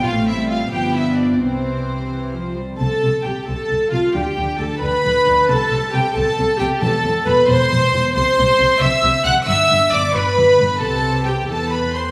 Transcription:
<<
  \new Staff \with { instrumentName = "Violin section" } { \time 6/8 \key c \major \tempo 4. = 89 f''8 e''8 f''8 g''8 e''8 d''8 | c''2~ c''8 r8 | a''4 g''8 a''4 f''8 | g''4 a''8 b''4. |
a''4 g''8 a''4 g''8 | a''4 b''8 c'''4. | \key c \lydian c'''4. e'''4 fis'''8 | e'''4 d'''8 b''4. |
a''4 g''8 a''8 b''8 c'''8 | }
  \new Staff \with { instrumentName = "Viola section" } { \time 6/8 \key c \major << { c'4. b4. | c'4. e8 f8 g8 | a'4 g'8 a'4 f'8 | g'4 a'8 b'4. |
a'4 g'8 a'4 g'8 | a'4 b'8 c''4. | \key c \lydian c''4. e''4 fis''8 | e''4 d''8 b'4. |
a'4 g'8 a'8 b'8 c''8 | } \\ { a8. g8. f4. | e4. r4. | r2. | r2. |
r2. | r2. | r2. | r2. |
r2. | } >> }
  \new Staff \with { instrumentName = "Violin section" } { \time 6/8 \key c \major f'8 e'8 f'8 g'8 e'8 d'8 | c'2~ c'8 r8 | a'4 g'8 a'4 f'8 | g'4 a'8 b'4. |
a'4 g'8 a'4 g'8 | a'4 b'8 c''4. | \key c \lydian c''4. e''4 fis''8 | e''4 d''8 b'4. |
a'4 g'8 a'8 b'8 c''8 | }
  \new Staff \with { instrumentName = "Cello section" } { \clef bass \time 6/8 \key c \major a,4. g,4. | c2~ c8 r8 | c8 c8 c8 c8 c8 c8 | d8 d8 d8 d8 d8 d8 |
c8 c8 c8 c8 c8 c8 | e,8 e,8 e,8 e,8 e,8 e,8 | \key c \lydian c8 c8 c8 c8 c8 c8 | g,8 g,8 g,8 g,8 g,8 g,8 |
c4. e4. | }
  \new Staff \with { instrumentName = "Double bass section" } { \clef bass \time 6/8 \key c \major a,,4. g,,4. | c,2~ c,8 r8 | c,8 c,8 c,8 c,8 c,8 c,8 | d,8 d,8 d,8 d,8 d,8 d,8 |
c,8 c,8 c,8 c,8 c,8 c,8 | e,,8 e,,8 e,,8 e,,8 e,,8 e,,8 | \key c \lydian c,8 c,8 c,8 c,8 c,8 c,8 | g,,8 g,,8 g,,8 g,,8 g,,8 g,,8 |
c,4. e,4. | }
>>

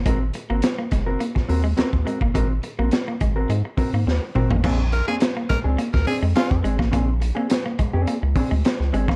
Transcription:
<<
  \new Staff \with { instrumentName = "Tenor saxophone" } { \time 4/4 \key bes \mixolydian \tempo 4 = 105 r1 | r1 | r8 bes'16 aes'16 r8 bes'16 r8 bes'16 aes'16 r16 f'8 r8 | r1 | }
  \new Staff \with { instrumentName = "Clean electric guitar" } { \time 4/4 \key bes \mixolydian <c' ges' bes'>16 r8 <c' ges' bes'>16 r8. <c' ges' bes'>16 r8 <c' ges' bes'>16 r16 <c' ges' bes'>16 r16 <c' ges' bes'>16 r16 | <c' ges' bes'>16 r8 <c' ges' bes'>16 r8. <c' ges' bes'>16 r8 <c' ges' bes'>16 r8. <c' ges' bes'>16 r16 | <c' d' aes'>16 r8 <c' d' aes'>16 r8. <c' d' aes'>16 r8 <c' d' aes'>16 r16 <c' d' aes'>16 r16 <c' d' aes'>16 r16 | <c' d' aes'>16 r8 <c' d' aes'>16 r8. <c' d' aes'>16 r8 <c' d' aes'>16 r8. <c' d' aes'>16 r16 | }
  \new Staff \with { instrumentName = "Clean electric guitar" } { \time 4/4 \key bes \mixolydian aes16 r8 bes16 r16 bes16 aes16 r16 bes16 r8 aes16 r8 aes16 bes16 | aes16 r8 bes16 r16 bes16 aes16 r16 aes16 r8 bes16 r8 c'16 bes16 | bes16 r8 bes16 r16 bes16 aes16 r16 bes16 r8 aes16 r8 aes16 bes16 | bes16 r8 bes16 r16 bes16 aes16 r16 bes16 r8 aes16 r8 aes16 bes16 | }
  \new Staff \with { instrumentName = "Analog synth bass" } { \clef bass \time 4/4 \key bes \mixolydian aes,,8 r16 aes,,16 r8 ges,,8 r16 ees,16 ees,8 ees,16 ees,16 r16 g,,16 | aes,,8 r16 bes,,16 r8 aes,,8 aes,16 r16 aes,16 aes,16 ees,16 r16 aes,,16 a,,16 | bes,,8. r8. des,16 des,16 r16 d,16 r16 f,16 r16 f,16 aes,,16 a,,16 | bes,,8. r8. f,16 f,16 r16 des,16 r16 d,16 r16 des,16 aes,,16 a,,16 | }
  \new DrumStaff \with { instrumentName = "Drums" } \drummode { \time 4/4 <hh bd>8 hh8 <hh sn>8 <hh bd sn>8 hh16 <bd sn>16 hho8 <hh sn>16 bd16 hh16 bd16 | <hh bd>8 hh8 <hh sn>8 <hh bd>8 hh8 <hho bd>8 sn8 toml16 tomfh16 | <cymc bd>8 hh8 <hh sn>8 <hh bd sn>8 hh16 <bd sn>16 hho8 <hh sn>16 bd16 hh16 <bd sn>16 | <hh bd>8 hh8 <hh sn>8 <hh bd>8 hh8 <hho bd>8 <hh sn>16 sn16 hh16 <bd sn>16 | }
>>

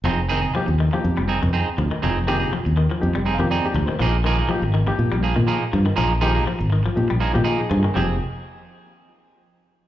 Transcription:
<<
  \new Staff \with { instrumentName = "Clean electric guitar" } { \time 4/4 \key f \dorian \tempo 4 = 122 <c' ees' aes'>16 r16 <c' ees' aes'>16 <ees' aes'>16 r4. <c' ees' aes'>16 r16 <c' ees' aes'>16 r8. | <c' ees' aes'>16 r16 <c' aes'>16 <ees' aes'>16 r4. <c' ees' aes'>16 r16 <c' ees' aes'>16 r8. | <f bes ees' aes'>16 r16 <f bes ees' aes'>16 <bes ees' aes'>16 r4. <f bes aes'>16 r16 <f bes ees' aes'>16 r8. | <f bes ees' aes'>16 r16 <f ees' aes'>16 <bes ees' aes'>16 r4. <f bes ees' aes'>16 r16 <f bes ees' aes'>16 r8. |
<c' aes'>8 r2. r8 | }
  \new Staff \with { instrumentName = "Reed electric piano" } { \time 4/4 \key f \dorian << { r1 | r2 \tuplet 3/2 { r8. aes''16 f''8 d''4 c''8 } | r1 | r2. ees''8 aes''8 |
r1 | } \\ { r4 <f bes ees' g'>16 r8 <f bes ees' g'>8. r4. | r8 <f bes ees' g'>8 r4 <f bes ees' g'>16 r8 <f bes ees' g'>16 r16 <f bes ees' g'>8 r16 | r4 <f bes ees' g'>16 r8 <f bes ees' g'>8. r4. | r8 <f bes ees' g'>8 r4 <f bes ees' g'>16 r8 <f bes ees' g'>16 r16 <f bes ees' aes'>8 r16 |
<f bes ees' g'>8 r2. r8 | } >> }
  \new Staff \with { instrumentName = "Clean electric guitar" } { \clef bass \time 4/4 \key f \dorian f8 ees8 f8 ees16 f8 g8 ees8 r16 f16 ees16 | f8 ees8 f8 ees16 f8 g8 ees8 r16 f16 ees16 | f8 ees8 f8 ees16 f8 g8 ees8 r16 f16 ees16 | f8 ees8 f8 ees16 f8 g8 ees8 r16 f16 ees16 |
f8 r2. r8 | }
  \new Staff \with { instrumentName = "Fingered electric bass" } { \clef bass \time 4/4 \key f \dorian f,,4 r16 ees,8 r16 f,16 f,,8 f,8 r16 d,16 r16 | f,,4 r16 ees,8 r16 f,16 f,,8 f,8 r16 d,16 r16 | bes,,4 r16 aes,,8 r16 bes,16 bes,,8 bes,8 r16 g,16 r16 | bes,,4 r16 aes,,8 r16 bes,16 bes,,8 bes,8 r16 g,16 r16 |
f,,8 r2. r8 | }
>>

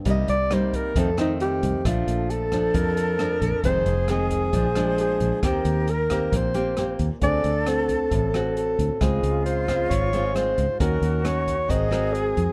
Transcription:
<<
  \new Staff \with { instrumentName = "Alto saxophone" } { \time 4/4 \key bes \major \tempo 4 = 134 ees''8 d''8 c''8 bes'8 a'8 ees'8 g'4 | f'4 a'4 bes'2 | c''4 aes'2 aes'4 | g'4 bes'4 c''4. r8 |
d''4 a'2 a'4 | aes'4 c''4 des''4 c''4 | bes'4 des''4 ees''4 aes'4 | }
  \new Staff \with { instrumentName = "Flute" } { \time 4/4 \key bes \major r1 | a'1 | aes'2 c''2 | bes'2.~ bes'8 r8 |
a'2.~ a'8 r8 | f'1 | ges'2 aes'2 | }
  \new Staff \with { instrumentName = "Nylon-string guitar" } { \time 4/4 \key bes \major << { <g bes ees'>8 r8 <g bes ees'>4 <ees a c'>8 <ees a c'>4. | <f a d'>4. <f d'>4. <f d'>4 | <ees aes c'>8 r8 <ees aes c'>4 <f aes d'>8 <f aes d'>4. | <bes c' g'>4 r8 <bes c' g'>4 <bes c' g'>8 <bes c' g'>8 r8 |
<c' fis' gis'>8 r8 <c' fis'>4. <c' fis'>4. | <aes c' f'>4. <aes c' f'>4 <aes c' f'>8 <aes c' f'>8 r8 | <des' ges' bes'>4 <des' ges' bes'>8 r8 <c' ges' bes'>8 <c' ges' bes'>4. | } \\ { c2 f,2 | bes,2 f,2 | f,2 bes,2 | ees2 bes,2 |
d2 a,2 | des2 aes,2 | ees2 aes2 | } >> }
  \new Staff \with { instrumentName = "Fingered electric bass" } { \clef bass \time 4/4 \key bes \major c,8 c,4. f,4. c,16 r16 | bes,,8 bes,,4. f,4. bes,,16 r16 | f,,8 f,,4. bes,,4. bes,,16 r16 | ees,8 ees,4. bes,,4. ees,16 r16 |
d,8 d,4. a,,4. d,16 r16 | des,8 des,4. aes,,4. des,16 r16 | ees,8 ees,4. aes,,4. f,16 r16 | }
  \new DrumStaff \with { instrumentName = "Drums" } \drummode { \time 4/4 <hh bd>8 hh8 <hh ss>8 <hh bd>8 <hh bd>8 <hh ss>8 hh8 <hh bd>8 | <hh bd ss>8 hh8 hh8 <hh bd ss>8 <hh bd>8 hh8 <hh ss>8 <hh bd>8 | <hh bd>8 hh8 <hh ss>8 <hh bd>8 <hh bd>8 <hh ss>8 hh8 <hh bd>8 | <hh bd ss>8 hh8 hh8 <hh bd ss>8 <hh bd>8 hh8 <hh ss>8 <hh bd>8 |
<hh bd>8 hh8 <hh ss>8 <hh bd>8 <hh bd>8 <hh ss>8 hh8 <hh bd>8 | <hh bd ss>8 hh8 hh8 <hh bd ss>8 <hh bd>8 hh8 <hh ss>8 <hh bd>8 | <hh bd>8 hh8 <hh ss>8 <hh bd>8 <hh bd>8 <hh ss>8 hh8 <hh bd>8 | }
>>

